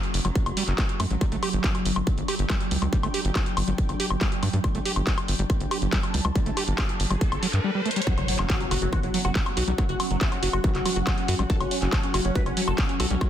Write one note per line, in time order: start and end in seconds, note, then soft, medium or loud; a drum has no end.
0.00 7.64 F#3 medium
0.00 1.21 C#4 medium
0.00 1.21 F#4 medium
0.00 1.21 F#5 medium
0.00 closed hi-hat soft
0.14 0.20 F#1 medium
0.14 open hi-hat loud
0.25 0.31 F#1 medium
0.25 0.27 F#3 medium
0.25 closed hi-hat medium
0.25 high woodblock soft
0.35 kick loud
0.35 closed hi-hat medium
0.46 0.52 F#1 medium
0.46 closed hi-hat soft
0.46 high woodblock medium
0.57 0.63 G3 medium
0.57 open hi-hat loud
0.68 0.74 F#1 medium
0.68 clap soft
0.68 closed hi-hat soft
0.78 0.81 A3 medium
0.78 kick loud
0.78 clap loud
0.78 closed hi-hat medium
0.78 high woodblock soft
0.89 closed hi-hat soft
1.00 1.06 F#2 medium
1.00 1.04 A3 loud
1.00 open hi-hat loud
1.00 high woodblock medium
1.10 1.17 A1 medium
1.10 1.15 F#3 medium
1.10 closed hi-hat medium
1.21 1.26 G3 loud
1.21 7.64 D4 medium
1.21 kick loud
1.21 closed hi-hat medium
1.21 high woodblock soft
1.32 1.38 G1 medium
1.32 1.36 A3 medium
1.32 closed hi-hat medium
1.43 1.49 G4 loud
1.43 open hi-hat loud
1.43 high woodblock medium
1.53 1.59 G1 medium
1.53 closed hi-hat medium
1.64 kick loud
1.64 clap loud
1.64 closed hi-hat medium
1.75 closed hi-hat medium
1.75 high woodblock soft
1.85 1.92 G1 medium
1.85 open hi-hat loud
1.96 2.02 G1 medium
1.96 1.99 G3 medium
1.96 closed hi-hat soft
1.96 high woodblock medium
2.07 kick loud
2.07 closed hi-hat medium
2.18 2.24 G1 medium
2.18 closed hi-hat medium
2.28 2.35 G4 loud
2.28 5.83 G5 medium
2.28 open hi-hat loud
2.28 high woodblock soft
2.39 2.45 G1 medium
2.39 closed hi-hat soft
2.50 2.56 G3 medium
2.50 kick loud
2.50 clap loud
2.50 closed hi-hat medium
2.50 high woodblock medium
2.61 closed hi-hat medium
2.71 2.77 C#2 medium
2.71 2.74 G3 medium
2.71 open hi-hat loud
2.82 2.88 C#2 medium
2.82 2.85 G3 medium
2.82 closed hi-hat medium
2.82 high woodblock soft
2.93 2.97 G3 loud
2.93 kick loud
2.93 closed hi-hat medium
3.03 3.09 G1 medium
3.03 3.08 A3 medium
3.03 closed hi-hat medium
3.03 high woodblock medium
3.14 3.21 G4 loud
3.14 open hi-hat loud
3.25 3.31 G1 medium
3.25 closed hi-hat medium
3.35 kick loud
3.35 clap loud
3.35 closed hi-hat medium
3.35 high woodblock soft
3.46 closed hi-hat medium
3.57 3.63 G1 medium
3.57 open hi-hat loud
3.57 high woodblock medium
3.68 3.74 G1 medium
3.68 3.70 G3 medium
3.68 closed hi-hat medium
3.78 kick loud
3.78 closed hi-hat medium
3.89 3.95 G1 medium
3.89 closed hi-hat medium
3.89 high woodblock soft
4.00 4.06 G4 loud
4.00 open hi-hat loud
4.10 4.17 G1 medium
4.10 closed hi-hat soft
4.10 high woodblock medium
4.21 4.28 G3 medium
4.21 kick loud
4.21 clap loud
4.21 closed hi-hat medium
4.32 closed hi-hat medium
4.43 4.49 G2 loud
4.43 4.45 G3 medium
4.43 open hi-hat loud
4.43 high woodblock soft
4.53 4.59 G2 medium
4.53 4.56 G3 medium
4.53 closed hi-hat medium
4.64 4.68 G3 loud
4.64 kick loud
4.64 closed hi-hat medium
4.64 riser medium
4.64 high woodblock medium
4.75 4.81 G1 medium
4.75 4.79 A3 medium
4.75 closed hi-hat medium
4.85 4.92 G4 loud
4.85 open hi-hat loud
4.96 5.02 G1 medium
4.96 closed hi-hat medium
4.96 high woodblock soft
5.07 kick loud
5.07 clap loud
5.07 closed hi-hat medium
5.18 closed hi-hat medium
5.18 high woodblock medium
5.28 5.34 G1 medium
5.28 open hi-hat loud
5.39 5.45 G1 medium
5.39 5.42 G3 medium
5.39 closed hi-hat medium
5.50 kick loud
5.50 closed hi-hat medium
5.50 high woodblock soft
5.60 5.67 G1 medium
5.60 closed hi-hat medium
5.70 5.78 G4 loud
5.70 7.64 A5 medium
5.70 open hi-hat loud
5.70 high woodblock medium
5.82 5.88 G1 medium
5.82 closed hi-hat medium
5.93 5.99 G3 medium
5.93 kick loud
5.93 clap loud
5.93 closed hi-hat medium
6.03 closed hi-hat medium
6.03 high woodblock soft
6.14 6.20 C#2 loud
6.14 6.17 G3 medium
6.14 open hi-hat medium
6.25 6.31 C#2 medium
6.25 6.27 G3 medium
6.25 closed hi-hat medium
6.25 high woodblock medium
6.35 6.40 G3 loud
6.35 kick loud
6.35 closed hi-hat loud
6.46 6.52 G1 medium
6.46 6.51 A3 medium
6.46 closed hi-hat medium
6.57 6.63 G4 loud
6.57 open hi-hat loud
6.57 high woodblock soft
6.68 6.74 G1 medium
6.68 closed hi-hat medium
6.78 kick loud
6.78 clap loud
6.78 closed hi-hat medium
6.78 high woodblock medium
6.89 closed hi-hat medium
7.00 7.06 G1 medium
7.00 open hi-hat loud
7.11 7.17 G1 medium
7.11 7.13 G3 medium
7.11 closed hi-hat medium
7.11 high woodblock soft
7.21 kick loud
7.21 closed hi-hat loud
7.32 7.38 G1 medium
7.32 closed hi-hat medium
7.32 high woodblock medium
7.43 7.47 F#3 loud
7.43 open hi-hat loud
7.53 7.59 G2 medium
7.53 clap soft
7.53 closed hi-hat medium
7.64 7.71 G3 loud
7.75 7.81 G3 medium
7.86 7.90 A3 medium
7.86 closed hi-hat medium
7.91 closed hi-hat medium
7.96 8.01 G3 medium
7.96 closed hi-hat medium
8.02 closed hi-hat medium
8.07 13.30 F#3 medium
8.07 8.13 F#3 loud
8.07 13.30 C#4 medium
8.07 8.13 F#4 loud
8.07 kick loud
8.07 closed hi-hat medium
8.07 impact medium
8.15 8.24 F#1 medium
8.15 8.24 F#3 medium
8.15 13.30 F#4 medium
8.15 closed hi-hat soft
8.15 high woodblock soft
8.28 8.35 F#3 medium
8.28 open hi-hat loud
8.33 13.30 F#5 medium
8.39 8.45 F#1 medium
8.39 8.45 F#3 medium
8.39 clap soft
8.39 high woodblock medium
8.50 8.56 F#4 loud
8.50 kick loud
8.50 clap loud
8.50 closed hi-hat medium
8.60 8.67 F#3 medium
8.60 closed hi-hat soft
8.71 8.77 F#1 medium
8.71 8.77 F#3 medium
8.71 8.78 F#4 loud
8.71 open hi-hat loud
8.71 high woodblock soft
8.82 8.88 F#1 medium
8.82 8.88 F#3 medium
8.82 closed hi-hat soft
8.93 8.99 E3 medium
8.93 8.99 F#4 medium
8.93 kick loud
8.93 closed hi-hat medium
8.93 high woodblock medium
9.03 9.09 F#1 medium
9.03 9.10 F#3 medium
9.03 closed hi-hat soft
9.14 9.18 F#3 medium
9.14 9.20 F#3 medium
9.14 open hi-hat loud
9.25 9.31 F#1 medium
9.25 9.27 F#4 loud
9.25 9.31 F#4 medium
9.25 high woodblock soft
9.35 9.40 G3 medium
9.35 kick loud
9.35 clap loud
9.35 closed hi-hat medium
9.46 9.52 F#3 medium
9.46 closed hi-hat soft
9.46 high woodblock medium
9.57 9.63 B1 medium
9.57 9.63 F#4 medium
9.57 9.63 F#4 loud
9.57 open hi-hat loud
9.68 9.74 B1 medium
9.68 9.74 F#3 medium
9.68 9.72 G3 loud
9.68 closed hi-hat soft
9.78 9.85 F#3 loud
9.78 9.85 F#3 medium
9.78 kick loud
9.78 closed hi-hat medium
9.78 high woodblock soft
9.89 9.95 F#1 medium
9.89 9.95 F#4 medium
9.89 closed hi-hat soft
10.00 10.06 F#3 medium
10.00 open hi-hat loud
10.00 high woodblock medium
10.11 10.17 F#1 medium
10.11 10.17 F#3 medium
10.11 closed hi-hat soft
10.21 10.27 E4 medium
10.21 kick loud
10.21 clap loud
10.21 closed hi-hat medium
10.32 10.38 F#3 medium
10.32 closed hi-hat soft
10.32 high woodblock soft
10.43 10.49 F#1 loud
10.43 10.49 F#3 medium
10.43 10.49 F#4 loud
10.43 open hi-hat loud
10.53 10.60 F#1 medium
10.53 10.60 F#4 medium
10.53 closed hi-hat soft
10.53 high woodblock medium
10.64 10.71 E3 medium
10.64 10.70 F#3 medium
10.64 kick loud
10.64 closed hi-hat medium
10.75 10.81 F#1 medium
10.75 10.81 F#3 medium
10.75 clap soft
10.75 closed hi-hat soft
10.86 10.90 F#3 medium
10.86 11.41 F#4 loud
10.86 open hi-hat loud
10.86 high woodblock soft
10.96 11.02 F#1 medium
10.96 10.99 F#4 loud
10.96 closed hi-hat soft
11.07 11.11 G3 medium
11.07 kick loud
11.07 clap loud
11.07 closed hi-hat medium
11.07 high woodblock medium
11.18 closed hi-hat soft
11.28 11.34 F#2 medium
11.28 11.35 F#4 loud
11.28 open hi-hat loud
11.39 11.45 A1 medium
11.39 11.43 G3 loud
11.39 closed hi-hat soft
11.39 high woodblock soft
11.50 11.56 F#3 loud
11.50 11.56 A4 loud
11.50 kick loud
11.50 closed hi-hat medium
11.60 11.67 F#1 medium
11.60 11.67 C#4 medium
11.60 closed hi-hat soft
11.60 high woodblock medium
11.71 11.77 C#4 medium
11.71 open hi-hat loud
11.82 11.88 F#1 medium
11.82 11.88 C#4 medium
11.82 clap soft
11.82 closed hi-hat soft
11.93 11.99 A4 medium
11.93 kick loud
11.93 clap loud
11.93 closed hi-hat medium
11.93 high woodblock soft
12.03 12.10 C#4 medium
12.03 closed hi-hat soft
12.14 12.20 F#1 medium
12.14 12.20 C#4 medium
12.14 12.21 F#4 loud
12.14 open hi-hat loud
12.14 high woodblock medium
12.25 12.31 F#1 medium
12.25 12.31 C#4 medium
12.25 closed hi-hat soft
12.35 12.42 E3 medium
12.35 12.42 B4 loud
12.35 kick loud
12.35 closed hi-hat medium
12.46 12.52 F#1 medium
12.46 12.52 C#4 medium
12.46 closed hi-hat soft
12.46 high woodblock soft
12.57 12.61 F#3 medium
12.57 12.63 C#4 medium
12.57 open hi-hat loud
12.68 12.74 F#1 medium
12.68 12.70 F#4 loud
12.68 12.74 A4 medium
12.68 high woodblock medium
12.78 12.83 G3 medium
12.78 12.85 C#4 medium
12.78 kick loud
12.78 clap loud
12.78 closed hi-hat medium
12.89 12.95 C#4 medium
12.89 closed hi-hat soft
13.00 13.06 B1 medium
13.00 13.06 F#4 loud
13.00 13.06 A4 medium
13.00 open hi-hat loud
13.00 high woodblock soft
13.10 13.17 B1 medium
13.10 13.15 G3 loud
13.10 13.17 C#4 medium
13.10 closed hi-hat soft
13.21 13.28 F#3 loud
13.21 kick loud
13.21 closed hi-hat medium
13.21 high woodblock medium